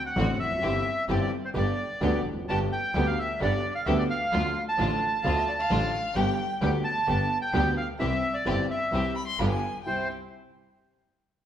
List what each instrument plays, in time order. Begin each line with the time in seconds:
0.06 bandoneon F#5
0.16 upright piano A1 A2 D3 A3 C4 F#4, double bass A1, string section C4 D4 F#4
0.39 double bass F1, bandoneon E5
0.45 upright piano E2
0.51 upright piano F2
0.57 upright piano F#2
0.63 double bass G1, upright piano G1 G2 E3 G3 C4 G4, string section C4 E4 G4
1.09 double bass G1, upright piano G1 G2 E3 G3 C4 G4, string section C4 E4 G4, bandoneon D5
1.21 bandoneon D5
1.45 bandoneon C5
1.54 upright piano G1 G2 D3 G3 B3 G4, double bass G1, string section B3 D4 G4
1.58 bandoneon D5
2.01 upright piano D2 D3 G3 B3 G4, double bass D2, string section B3 D4 G4
2.25 double bass F1
2.32 upright piano E2
2.38 upright piano F2
2.44 upright piano F#2
2.48 double bass G1, upright piano G1 G2 D3 G3 B3 G4, string section B3 D4 G4, bandoneon A5
2.72 bandoneon G5
2.94 double bass D2, upright piano D2 D3 G3 B3 G4, string section B3 D4 G4
3.07 bandoneon F5
3.19 bandoneon E5
3.40 double bass G1, upright piano G1 G2 D3 G3 B3 G4, string section B3 D4 G4, bandoneon D5
3.75 bandoneon F5
3.85 double bass D2, upright piano D2 D3 G3 B3 G4, string section B3 D4 G4, bandoneon E5
3.99 bandoneon D5
4.10 bandoneon F5
4.32 double bass D2, upright piano D2 D3 F3 A3 F4, string section A3 D4 F4
4.69 bandoneon A5
4.79 double bass A1, upright piano A1 A2 D3 F3 A3 F4, string section A3 D4 F4
5.23 upright piano D2 D3 F3 A3 F4, double bass D2, string section A3 D4 F4, violin F5
5.35 violin E5
5.48 violin D5
5.59 violin F5
5.70 upright piano A1 A2 D3 F3 A3 F4, double bass A1, string section A3 D4 F4
6.15 double bass G1, upright piano G1 G2 D3 G3 B3 G4, string section B3 D4 G4, violin G5
6.61 double bass D2, upright piano D2 D3 G3 B3 G4, string section B3 D4 G4, bandoneon G5
6.84 bandoneon A5
7.07 upright piano G1 G2 D3 G3 B3 G4, double bass G1, string section B3 D4 G4
7.42 bandoneon G5
7.54 double bass D2, upright piano D2 D3 G3 B3 G4, string section B3 D4 G4
7.77 bandoneon F5
7.99 upright piano C2 C3 E3 G3 C4 G4, double bass C2, string section C4 E4 G4, bandoneon E5
8.34 bandoneon D5
8.46 double bass G1, upright piano G1 G2 E3 G3 C4 G4, string section C4 E4 G4
8.71 bandoneon E5
8.92 double bass C2, upright piano C2 C3 E3 G3 C4 G4, string section C4 E4 G4
9.15 violin B5
9.27 violin C6
9.38 double bass G1, upright piano G1 G2 D3 G3 B3 F4, string section B3 F4 G4, violin B5
9.50 violin G#5
9.84 upright piano C2 G3 C4 E4, double bass C2, string section C4 E4 G4, bandoneon C5, flute E5, violin G5